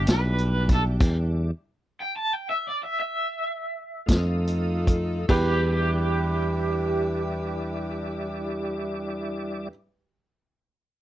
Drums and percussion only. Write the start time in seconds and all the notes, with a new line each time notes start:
0.07 snare, closed hi-hat
0.38 closed hi-hat
0.69 kick, snare, closed hi-hat
1.01 kick, closed hi-hat, crash
4.09 kick, snare, closed hi-hat
4.47 closed hi-hat
4.87 kick, closed hi-hat
5.29 kick, crash